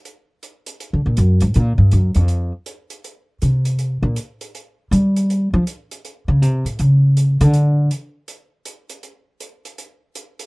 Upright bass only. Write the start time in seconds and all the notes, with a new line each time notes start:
0.93 D3
1.06 A#2
1.18 F#2
1.42 G#2
1.56 A#2
1.78 G2
1.93 F#2
2.16 F2
3.42 C3
4.03 A#2
4.91 G3
5.54 F3
6.28 C#3
6.42 C3
6.65 A2
6.80 C#3
7.41 D3